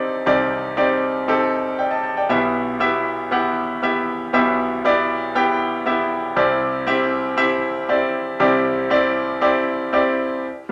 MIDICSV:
0, 0, Header, 1, 2, 480
1, 0, Start_track
1, 0, Tempo, 508906
1, 243, Time_signature, 4, 2, 24, 8
1, 10108, End_track
2, 0, Start_track
2, 0, Title_t, "Grand piano"
2, 0, Program_c, 0, 0
2, 0, Control_c, 0, 64, 127
2, 0, Note_on_c, 0, 36, 62
2, 0, Note_on_c, 0, 48, 64
2, 0, Note_on_c, 0, 60, 67
2, 0, Note_on_c, 0, 62, 54
2, 0, Note_on_c, 0, 63, 64
2, 0, Note_on_c, 0, 67, 64
2, 0, Note_on_c, 0, 69, 84
2, 0, Note_on_c, 0, 74, 77
2, 109, Note_off_c, 0, 60, 0
2, 112, Note_off_c, 0, 67, 0
2, 113, Note_off_c, 0, 63, 0
2, 115, Note_off_c, 0, 74, 0
2, 210, Note_off_c, 0, 36, 0
2, 210, Note_off_c, 0, 48, 0
2, 246, Note_on_c, 0, 48, 65
2, 246, Note_on_c, 0, 63, 67
2, 247, Note_on_c, 0, 60, 75
2, 249, Note_on_c, 0, 67, 64
2, 250, Note_on_c, 0, 36, 63
2, 252, Note_on_c, 0, 74, 84
2, 589, Note_off_c, 0, 63, 0
2, 590, Note_off_c, 0, 60, 0
2, 591, Note_off_c, 0, 67, 0
2, 593, Note_off_c, 0, 74, 0
2, 724, Note_on_c, 0, 60, 74
2, 727, Note_on_c, 0, 63, 65
2, 727, Note_on_c, 0, 67, 66
2, 732, Note_on_c, 0, 74, 82
2, 1069, Note_off_c, 0, 60, 0
2, 1070, Note_off_c, 0, 63, 0
2, 1070, Note_off_c, 0, 67, 0
2, 1072, Note_off_c, 0, 74, 0
2, 1206, Note_on_c, 0, 60, 68
2, 1206, Note_on_c, 0, 63, 66
2, 1210, Note_on_c, 0, 67, 65
2, 1215, Note_off_c, 0, 69, 0
2, 1215, Note_on_c, 0, 69, 84
2, 1550, Note_off_c, 0, 60, 0
2, 1550, Note_off_c, 0, 63, 0
2, 1552, Note_off_c, 0, 67, 0
2, 1554, Note_off_c, 0, 69, 0
2, 1686, Note_on_c, 0, 79, 59
2, 1687, Note_on_c, 0, 74, 43
2, 1799, Note_on_c, 0, 81, 56
2, 1800, Note_off_c, 0, 74, 0
2, 1804, Note_on_c, 0, 75, 50
2, 1905, Note_off_c, 0, 81, 0
2, 1909, Note_off_c, 0, 79, 0
2, 1919, Note_on_c, 0, 81, 55
2, 2032, Note_off_c, 0, 75, 0
2, 2048, Note_on_c, 0, 79, 55
2, 2051, Note_on_c, 0, 74, 47
2, 2128, Note_off_c, 0, 48, 0
2, 2130, Note_off_c, 0, 36, 0
2, 2145, Note_off_c, 0, 81, 0
2, 2161, Note_on_c, 0, 59, 76
2, 2162, Note_on_c, 0, 47, 59
2, 2164, Note_on_c, 0, 64, 67
2, 2168, Note_on_c, 0, 35, 60
2, 2168, Note_on_c, 0, 67, 63
2, 2168, Note_on_c, 0, 76, 78
2, 2176, Control_c, 0, 64, 0
2, 2184, Note_off_c, 0, 62, 0
2, 2274, Note_off_c, 0, 79, 0
2, 2276, Note_off_c, 0, 74, 0
2, 2315, Control_c, 0, 64, 127
2, 2507, Note_off_c, 0, 59, 0
2, 2509, Note_off_c, 0, 64, 0
2, 2511, Note_off_c, 0, 67, 0
2, 2511, Note_off_c, 0, 76, 0
2, 2638, Note_on_c, 0, 59, 75
2, 2642, Note_on_c, 0, 64, 67
2, 2644, Note_on_c, 0, 67, 70
2, 2647, Note_on_c, 0, 76, 78
2, 2986, Note_off_c, 0, 59, 0
2, 2988, Note_off_c, 0, 64, 0
2, 2989, Note_off_c, 0, 67, 0
2, 2990, Note_off_c, 0, 76, 0
2, 3122, Note_on_c, 0, 59, 69
2, 3128, Note_on_c, 0, 64, 67
2, 3129, Note_on_c, 0, 67, 68
2, 3134, Note_on_c, 0, 78, 80
2, 3468, Note_off_c, 0, 59, 0
2, 3471, Note_off_c, 0, 64, 0
2, 3471, Note_off_c, 0, 67, 0
2, 3474, Note_off_c, 0, 78, 0
2, 3604, Note_on_c, 0, 64, 60
2, 3605, Note_on_c, 0, 59, 69
2, 3612, Note_on_c, 0, 67, 66
2, 3616, Note_on_c, 0, 76, 78
2, 3949, Note_off_c, 0, 59, 0
2, 3949, Note_off_c, 0, 64, 0
2, 3953, Note_off_c, 0, 67, 0
2, 3955, Note_off_c, 0, 76, 0
2, 4046, Note_off_c, 0, 47, 0
2, 4049, Note_off_c, 0, 35, 0
2, 4085, Note_on_c, 0, 59, 73
2, 4087, Note_on_c, 0, 64, 65
2, 4088, Note_on_c, 0, 67, 68
2, 4091, Note_on_c, 0, 35, 62
2, 4091, Note_on_c, 0, 47, 63
2, 4094, Note_on_c, 0, 76, 85
2, 4430, Note_off_c, 0, 59, 0
2, 4431, Note_off_c, 0, 64, 0
2, 4431, Note_off_c, 0, 67, 0
2, 4434, Note_off_c, 0, 76, 0
2, 4571, Note_on_c, 0, 59, 77
2, 4573, Note_on_c, 0, 64, 69
2, 4576, Note_on_c, 0, 67, 68
2, 4579, Note_on_c, 0, 74, 90
2, 4912, Note_off_c, 0, 59, 0
2, 4913, Note_off_c, 0, 64, 0
2, 4915, Note_off_c, 0, 67, 0
2, 4917, Note_off_c, 0, 74, 0
2, 5047, Note_on_c, 0, 59, 75
2, 5049, Note_on_c, 0, 64, 70
2, 5052, Note_on_c, 0, 79, 89
2, 5055, Note_on_c, 0, 67, 71
2, 5391, Note_off_c, 0, 59, 0
2, 5392, Note_off_c, 0, 64, 0
2, 5393, Note_off_c, 0, 79, 0
2, 5394, Note_off_c, 0, 67, 0
2, 5525, Note_on_c, 0, 59, 69
2, 5530, Note_on_c, 0, 64, 69
2, 5532, Note_on_c, 0, 67, 62
2, 5532, Note_on_c, 0, 76, 74
2, 5869, Note_off_c, 0, 59, 0
2, 5872, Note_off_c, 0, 64, 0
2, 5873, Note_off_c, 0, 67, 0
2, 5873, Note_off_c, 0, 76, 0
2, 5970, Note_off_c, 0, 35, 0
2, 5970, Note_off_c, 0, 47, 0
2, 6001, Note_on_c, 0, 48, 66
2, 6001, Note_on_c, 0, 60, 78
2, 6003, Note_on_c, 0, 36, 61
2, 6004, Note_on_c, 0, 64, 72
2, 6004, Note_on_c, 0, 67, 67
2, 6006, Note_on_c, 0, 74, 82
2, 6017, Control_c, 0, 64, 0
2, 6170, Control_c, 0, 64, 127
2, 6347, Note_off_c, 0, 60, 0
2, 6349, Note_off_c, 0, 64, 0
2, 6349, Note_off_c, 0, 67, 0
2, 6350, Note_off_c, 0, 74, 0
2, 6476, Note_on_c, 0, 60, 81
2, 6480, Note_on_c, 0, 64, 68
2, 6484, Note_on_c, 0, 67, 73
2, 6485, Note_on_c, 0, 76, 87
2, 6825, Note_off_c, 0, 60, 0
2, 6827, Note_off_c, 0, 64, 0
2, 6829, Note_off_c, 0, 67, 0
2, 6829, Note_off_c, 0, 76, 0
2, 6949, Note_on_c, 0, 60, 74
2, 6955, Note_on_c, 0, 64, 73
2, 6957, Note_on_c, 0, 67, 72
2, 6957, Note_on_c, 0, 76, 90
2, 7301, Note_off_c, 0, 60, 0
2, 7304, Note_off_c, 0, 64, 0
2, 7305, Note_off_c, 0, 67, 0
2, 7305, Note_off_c, 0, 76, 0
2, 7439, Note_on_c, 0, 60, 68
2, 7439, Note_on_c, 0, 64, 63
2, 7442, Note_on_c, 0, 67, 61
2, 7446, Note_on_c, 0, 74, 76
2, 7786, Note_off_c, 0, 60, 0
2, 7786, Note_off_c, 0, 64, 0
2, 7788, Note_off_c, 0, 67, 0
2, 7790, Note_off_c, 0, 74, 0
2, 7884, Note_off_c, 0, 48, 0
2, 7886, Note_off_c, 0, 36, 0
2, 7918, Note_on_c, 0, 60, 75
2, 7920, Note_on_c, 0, 64, 73
2, 7922, Note_on_c, 0, 36, 66
2, 7923, Note_on_c, 0, 48, 63
2, 7924, Note_on_c, 0, 74, 81
2, 7926, Note_on_c, 0, 67, 69
2, 8266, Note_off_c, 0, 60, 0
2, 8266, Note_off_c, 0, 64, 0
2, 8269, Note_off_c, 0, 67, 0
2, 8269, Note_off_c, 0, 74, 0
2, 8396, Note_on_c, 0, 60, 82
2, 8400, Note_on_c, 0, 64, 74
2, 8404, Note_on_c, 0, 67, 72
2, 8405, Note_on_c, 0, 74, 92
2, 8744, Note_off_c, 0, 60, 0
2, 8746, Note_off_c, 0, 64, 0
2, 8748, Note_off_c, 0, 67, 0
2, 8749, Note_off_c, 0, 74, 0
2, 8878, Note_on_c, 0, 60, 79
2, 8881, Note_on_c, 0, 64, 72
2, 8883, Note_on_c, 0, 67, 70
2, 8884, Note_on_c, 0, 74, 87
2, 9225, Note_off_c, 0, 60, 0
2, 9227, Note_off_c, 0, 64, 0
2, 9227, Note_off_c, 0, 67, 0
2, 9228, Note_off_c, 0, 74, 0
2, 9363, Note_on_c, 0, 60, 75
2, 9363, Note_on_c, 0, 64, 63
2, 9371, Note_on_c, 0, 67, 67
2, 9372, Note_on_c, 0, 74, 79
2, 9707, Note_off_c, 0, 60, 0
2, 9707, Note_off_c, 0, 64, 0
2, 9711, Note_off_c, 0, 67, 0
2, 9712, Note_off_c, 0, 74, 0
2, 9804, Note_off_c, 0, 36, 0
2, 9804, Note_off_c, 0, 48, 0
2, 9856, Control_c, 0, 64, 0
2, 10000, Control_c, 0, 64, 127
2, 10108, End_track
0, 0, End_of_file